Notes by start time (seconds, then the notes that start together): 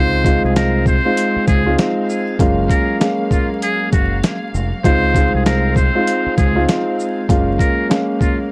Already playing: C#2 G#3 C4 D#4 F4 C5 F5
0.25 G#3 C4 D#4 F4, kick, closed hi-hat, shaker
0.44 C2 G#4
0.56 A#4, snare, closed hi-hat
0.86 C5, kick, shaker
1.05 G#3 C4 D#4 F4
1.17 closed hi-hat
1.36 muted fingered electric bass stroke
1.47 C#2 G#4, kick, closed hi-hat, shaker
1.66 G#3 C4 D#4 F4
1.79 snare, closed hi-hat
2.09 shaker
2.38 F#1 F#3 G#3 A#3 C#4 F4, kick, closed hi-hat
2.70 A#4, kick, closed hi-hat, shaker
3.00 G#3 A#3 C#4 F5, snare, closed hi-hat
3.31 F4, kick, shaker
3.62 G#4, closed hi-hat
3.92 F#1 F#4, kick, closed hi-hat, shaker
4.24 snare, closed hi-hat
4.54 F1, shaker
4.84 C#2 G#3 C4 D#4 F4 C5, kick, closed hi-hat
5.15 G#3 C4 D#4 F4, kick, closed hi-hat, shaker
5.34 C2 G#4
5.46 A#4, snare, closed hi-hat
5.76 C5, kick, shaker
5.95 G#3 C4 D#4 F4
6.07 closed hi-hat
6.26 muted fingered electric bass stroke
6.37 C#2 G#4, kick, closed hi-hat, shaker
6.56 G#3 C4 D#4 F4
6.69 snare, closed hi-hat
7.00 shaker
7.29 F#1 F#3 G#3 A#3 C#4 F4, kick, closed hi-hat
7.59 A#4, kick, closed hi-hat, shaker
7.89 G#3 A#3 C#4 F5, snare, closed hi-hat
8.21 F4, kick, shaker